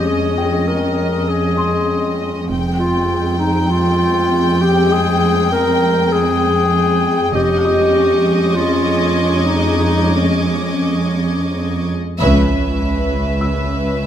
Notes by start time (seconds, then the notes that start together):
Already playing: F2 G#3 C#4 D#5
0.07 G#4
0.38 G5
0.68 A#4
1.28 G#4
1.57 C6
2.49 F1 F2 G#3 C4 G5
2.79 F4
3.39 D#4
3.70 F4
4.61 G4
4.92 G#4
5.52 A#4
6.12 G#4
7.35 F1 F2 G#3 C#4 G4 D#5 C#6
7.65 D#5 D#6
7.96 D6
8.55 F4 G#6
9.46 D#4
9.77 D#4
10.38 C#4
12.20 C#2 C#4 B4 E5, impact
13.41 E6